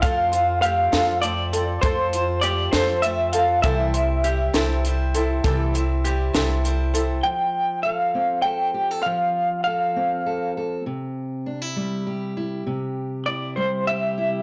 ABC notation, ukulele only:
X:1
M:6/8
L:1/8
Q:3/8=66
K:F
V:1 name="Ukulele"
A2 G A2 A | A2 G A2 A | A2 G A2 A | A2 G A2 A |
z6 | z6 | z6 | z6 |]